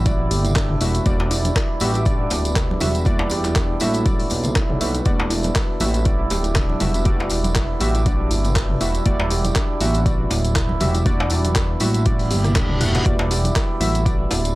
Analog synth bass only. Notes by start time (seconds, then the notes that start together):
Already playing: A1
0.31 G1
0.81 E1
1.06 E1
1.81 A1
2.31 D1
2.81 E1
3.81 A1
4.31 B1
4.69 B1
5.06 E1
5.80 A1
6.31 D1
6.81 E1
7.81 A1
8.31 G1
8.81 E1
9.06 E1
9.81 A1
10.31 D1
10.81 E1
11.81 A1
12.31 G1
12.56 D1
12.81 E1
13.06 E1
13.81 A1
14.31 D1